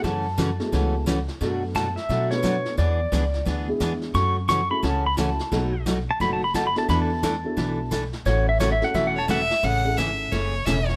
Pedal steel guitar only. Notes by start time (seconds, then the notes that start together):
0.04 A5
1.76 A5
1.96 E5
2.31 C#5
2.78 D5
4.15 C#6
4.49 C#6
4.71 B5
4.83 A5
5.07 B5
5.18 A5
6.11 A5
6.21 B5
6.33 A5
6.44 B5
6.56 A5
6.67 B5
6.78 A5
6.90 B5
7.02 A5
8.26 C#5
8.49 E5
8.60 C#5
8.72 E5
8.84 F#5
8.95 E5
9.07 F#5
9.18 A5
9.31 F#5
9.42 E5